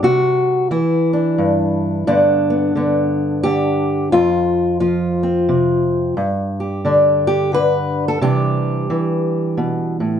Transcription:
0.03 C3 F#4
0.71 E3 E4
1.13 D4
1.38 G2
2.07 G2 D3 B3 D4
2.50 B3
2.75 D3 B3
3.43 D3 G4
4.12 F2 F4
4.80 F3 F4
5.23 C4
5.49 C3
6.17 G2
6.60 G4
6.85 D3 D4
7.27 G4
7.53 D3 B4
8.08 A4
8.21 C3 E3 G3 D4 G4
8.90 E3
9.57 B2
10.00 A2

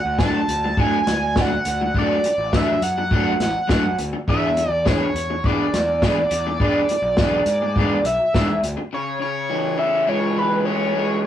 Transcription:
Already playing: F#5
0.05 D2
0.19 F#3 A3 D4 F#4 A5, kick, snare
0.48 D2, closed hi-hat
0.64 muted overdriven electric guitar stroke
0.77 F#3 A3 D4 F#4 G#5, kick
1.07 D2, snare, closed hi-hat
1.36 F#3 A3 D4 F#4, kick, snare
1.41 F#5
1.51 muted overdriven electric guitar stroke
1.65 D2, closed hi-hat
1.81 muted overdriven electric guitar stroke
1.94 F#3 A3 D4 F#4, kick
1.98 D5
2.24 muted overdriven electric guitar stroke, closed hi-hat
2.38 A1
2.53 F#3 A3 D4 F#4 E5, kick, snare
2.81 F#2 F#5, closed hi-hat
2.98 muted overdriven electric guitar stroke
3.11 F#3 A3 D4 F#4, kick
3.40 A1 F#5, snare, closed hi-hat
3.68 F#2 F#3 A3 D4 F#4, kick, snare
3.85 muted overdriven electric guitar stroke
3.98 D2, closed hi-hat
4.13 muted overdriven electric guitar stroke
4.28 E2 E3 B3 D4 G#4 E5, kick
4.57 muted overdriven electric guitar stroke, closed hi-hat
4.69 E2 D5
4.85 E3 B3 D4 G#4 C#5, kick, snare
5.14 E2, closed hi-hat
5.30 muted overdriven electric guitar stroke
5.44 E3 B3 D4 G#4 D5, kick
5.73 E2, snare, closed hi-hat
6.02 E3 B3 D4 G#4, kick, snare
6.18 muted overdriven electric guitar stroke
6.31 E2, closed hi-hat
6.47 muted overdriven electric guitar stroke
6.60 E3 B3 D4 G#4, kick
6.89 muted overdriven electric guitar stroke, closed hi-hat
7.02 B1
7.17 E3 B3 D4, kick, snare
7.21 G#4
7.46 G#2, closed hi-hat
7.62 muted overdriven electric guitar stroke
7.76 E3 B3 D4 G#4, kick
8.04 B1 E5, closed hi-hat
8.34 G#2 E3 B3 D4 G#4, kick, snare
8.50 muted overdriven electric guitar stroke
8.62 D2, closed hi-hat
8.77 muted overdriven electric guitar stroke
8.93 C#3 C#5
9.20 C#3 C#5
9.50 E3
9.78 C#4 E5
10.07 G#3 C#5
10.36 E3 B4
10.65 C#4 C#5
10.95 G#3

